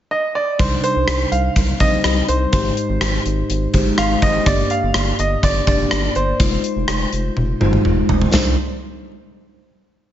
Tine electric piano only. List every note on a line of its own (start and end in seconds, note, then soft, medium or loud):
0.59 1.28 C3 medium
0.59 1.51 G3 medium
0.59 1.51 D4 medium
0.59 1.51 D#4 medium
0.59 1.52 C5 medium
1.80 2.49 G3 medium
1.80 2.49 C4 medium
1.80 2.49 D#4 medium
1.80 2.50 C5 medium
2.53 3.22 G#2 medium
2.53 3.45 G#3 medium
2.53 3.45 D#4 medium
2.53 3.45 G4 medium
2.53 3.45 C5 medium
3.73 4.43 G#3 medium
3.73 4.43 D#4 medium
3.73 4.43 G4 medium
3.73 4.43 C5 medium
4.46 5.15 G2 medium
4.46 5.38 A#3 medium
4.46 5.38 D4 medium
4.46 5.38 G4 medium
4.46 5.39 D5 medium
5.67 6.36 A#3 medium
5.67 6.36 D4 medium
5.67 6.37 G4 medium
5.67 6.37 D5 medium
6.40 7.32 G#3 medium
6.40 7.32 D#4 medium
6.40 7.32 F4 medium
6.40 7.32 C5 medium
7.60 8.30 G#3 medium
7.60 8.30 D#4 medium
7.60 8.30 F4 medium
7.60 8.30 C5 medium
8.33 8.56 C2 medium
8.33 8.56 G3 medium
8.33 8.56 D4 medium
8.33 8.56 D#4 medium
8.33 8.56 C5 medium